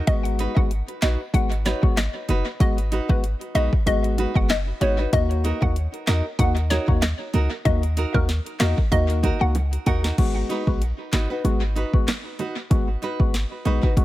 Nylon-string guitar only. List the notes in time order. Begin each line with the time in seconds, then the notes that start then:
0.39 D#4 F#4 B4
1.02 D#4 F#4 B4
1.65 D#4 F#4 B4
2.28 D#4 F#4 B4
2.92 D#4 F#4 B4
3.55 D#4 F#4 B4
4.18 D#4 F#4 B4
4.81 D#4 F#4 B4
4.98 D#4 F#4 B4
5.44 D#4 F#4 A#4
6.07 D#4 F#4 A#4
6.70 D#4 F#4 A#4
7.33 D#4 F#4 A#4
7.97 D#4 F#4 A#4
8.60 D#4 F#4 A#4
9.23 D#4 F#4 A#4
9.86 D#4 F#4 A#4
10.04 D#4 F#4 A#4
10.49 D#4 F#4 B4
11.12 D#4 F#4 B4
11.30 D#4 F#4 B4
11.76 D#4 F#4 B4
12.39 D#4 F#4 B4
13.02 D#4 F#4 B4
13.65 D#4 F#4 B4
13.83 D#4 F#4 B4